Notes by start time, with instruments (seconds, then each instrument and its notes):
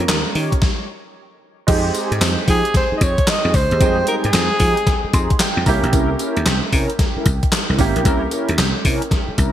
Already playing: grand piano A#3 C#4 F4 A#4, alto saxophone A#4
0.08 slap bass D#2, snare, clap, closed hi-hat, cowbell
0.35 slap bass D#3, analog polysynth D#4 G4 C#5, open hi-hat
0.52 kick, closed hi-hat
0.62 kick, snare
1.67 slap bass F2, grand piano G#3 C4 D#4 G4, analog polysynth D#4 G4 G#4, kick, closed hi-hat, crash, tambourine, cowbell
1.95 analog polysynth D#4 G4 G#4, closed hi-hat, tambourine, cowbell
2.12 slap bass G#2, closed hi-hat
2.21 slap bass F2, snare, clap, closed hi-hat, tambourine, cowbell
2.48 slap bass F3, analog polysynth D#4 G4 G#4, alto saxophone G#4, kick, open hi-hat, tambourine
2.65 closed hi-hat
2.74 alto saxophone C5, kick, snare, closed hi-hat, cowbell
2.91 analog polysynth D#4 G4 G#4, muted slap bass stroke
2.97 slap bass F2, alto saxophone D#5, kick, closed hi-hat, tambourine
3.03 alto saxophone C#5
3.18 kick, closed hi-hat
3.27 alto saxophone D#5, snare, clap, closed hi-hat, tambourine, cowbell
3.44 slap bass F2, analog polysynth D#4 G4 G#4
3.54 slap bass C#2, alto saxophone C5, kick, open hi-hat, tambourine
3.71 slap bass D#2, analog polysynth D#4 G4 G#4, closed hi-hat
3.80 slap bass F2, grand piano G3 C4 D#4 G5, analog polysynth D#4 G4 G#4, kick, closed hi-hat, tambourine, cowbell
3.86 grand piano G#3
4.07 analog polysynth D#4 G4 G#4, alto saxophone A#4, closed hi-hat, tambourine, cowbell
4.24 slap bass G#2, alto saxophone G#4, closed hi-hat
4.33 slap bass F2, snare, clap, closed hi-hat, tambourine, cowbell
4.60 slap bass F3, analog polysynth D#4 G4 G#4, kick, open hi-hat, tambourine
4.77 closed hi-hat
4.87 kick, snare, closed hi-hat, cowbell
5.04 muted slap bass stroke
5.13 slap bass F2, analog polysynth D#4 G4 G#4, grand piano C6, kick, closed hi-hat, tambourine
5.30 kick, closed hi-hat
5.39 grand piano G5, snare, clap, closed hi-hat, tambourine, cowbell
5.57 slap bass F2
5.66 slap bass C2, grand piano A#3 C#4 E4 G4, analog polysynth C#4 E4 A#4, kick, open hi-hat, tambourine
5.83 slap bass A#1, closed hi-hat
5.93 slap bass C2, analog polysynth C#4 E4 A#4, kick, closed hi-hat, tambourine, cowbell
6.19 analog polysynth C#4 E4 A#4, closed hi-hat, tambourine, cowbell
6.37 slap bass D#2, closed hi-hat
6.46 slap bass C2, snare, clap, closed hi-hat, tambourine, cowbell
6.72 slap bass C3, analog polysynth C#4 E4 A#4, kick, open hi-hat, tambourine
6.90 closed hi-hat
6.99 kick, snare, closed hi-hat, cowbell
7.16 analog polysynth C#4 E4 A#4, muted slap bass stroke
7.26 slap bass C2, kick, closed hi-hat, tambourine
7.43 kick, closed hi-hat
7.52 snare, clap, closed hi-hat, tambourine, cowbell
7.69 slap bass C2, analog polysynth C#4 E4 A#4
7.78 slap bass G#1, grand piano A#3 C#4 E4 G4, kick, open hi-hat, tambourine
7.96 slap bass A#1, analog polysynth C#4 E4 A#4, closed hi-hat
8.05 slap bass C2, analog polysynth C#4 E4 A#4, kick, closed hi-hat, tambourine, cowbell
8.31 analog polysynth C#4 E4 A#4, closed hi-hat, tambourine, cowbell
8.49 slap bass D#2, closed hi-hat
8.58 slap bass C2, snare, clap, closed hi-hat, tambourine, cowbell
8.85 slap bass C3, analog polysynth C#4 E4 A#4, kick, open hi-hat, tambourine
9.02 closed hi-hat
9.11 kick, snare, closed hi-hat, cowbell
9.28 muted slap bass stroke
9.38 slap bass C2, analog polysynth C#4 E4 A#4, kick, closed hi-hat, tambourine